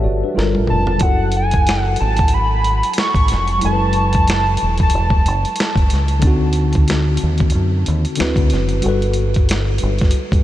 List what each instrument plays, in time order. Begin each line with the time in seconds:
Already playing: tine electric piano G3 F#4 G4 A4 B4 C#5 E5 F#5 A5
0.04 fingered electric bass G1, tine electric piano F#4 D5
0.24 tine electric piano D4 B4
0.34 fingered electric bass G1, tine electric piano G3 F4 A4
0.38 tine electric piano A#4, snare
0.55 fingered electric bass A1, high tom
0.67 fingered electric bass F1, analog synth lead A5, mid tom
0.87 floor tom
0.98 tine electric piano F#3 E4, kick, closed hi-hat
1.02 fingered electric bass F#1, tine electric piano F#4 A4, analog synth lead F#5
1.32 closed hi-hat
1.37 analog synth lead G#5
1.51 kick, closed hi-hat
1.67 snare, closed hi-hat
1.82 analog synth lead F#5
1.96 closed hi-hat
2.00 fingered electric bass G#1, analog synth lead A5
2.17 kick, closed hi-hat
2.28 closed hi-hat
2.34 analog synth lead B5
2.64 closed hi-hat
2.83 closed hi-hat
2.94 closed hi-hat
2.98 analog synth lead C#6, snare
3.15 fingered electric bass A1, kick, closed hi-hat
3.28 fingered electric bass F1, snare, closed hi-hat
3.48 closed hi-hat
3.59 tine electric piano F#3 E4, closed hi-hat
3.63 fingered electric bass F#1, tine electric piano G#3 A4, analog synth lead A5
3.73 tine electric piano B4
3.93 closed hi-hat
4.13 kick, closed hi-hat
4.28 snare, closed hi-hat
4.57 closed hi-hat
4.62 fingered electric bass E1
4.78 kick, closed hi-hat
4.83 analog synth lead A5
4.90 closed hi-hat
4.94 fingered electric bass E1
5.10 kick
5.26 fingered electric bass F#1, closed hi-hat
5.45 closed hi-hat
5.56 closed hi-hat
5.60 snare
5.76 fingered electric bass F#1, kick, closed hi-hat
5.90 fingered electric bass C#2, snare, closed hi-hat
6.08 closed hi-hat
6.19 tine electric piano D3 C4, kick, closed hi-hat
6.24 fingered electric bass D2, tine electric piano D#4 F#4
6.53 closed hi-hat
6.73 kick, closed hi-hat
6.88 snare, closed hi-hat
7.17 closed hi-hat
7.23 fingered electric bass D#2
7.38 kick, closed hi-hat
7.50 closed hi-hat
7.55 fingered electric bass F#2
7.86 fingered electric bass D#2, closed hi-hat
8.05 closed hi-hat
8.16 tine electric piano D3 C4 E4, closed hi-hat
8.20 fingered electric bass D2, tine electric piano F#4 B4, snare
8.36 fingered electric bass D2, kick, closed hi-hat
8.50 fingered electric bass F#1, snare, closed hi-hat
8.69 closed hi-hat
8.81 tine electric piano G3 F#4, closed hi-hat
8.85 fingered electric bass G1, tine electric piano A4 B4
9.02 closed hi-hat
9.14 closed hi-hat
9.34 kick, closed hi-hat
9.49 snare, closed hi-hat
9.78 closed hi-hat
9.83 fingered electric bass G1
9.99 kick, closed hi-hat
10.03 snare
10.11 closed hi-hat
10.32 fingered electric bass G2, kick, closed hi-hat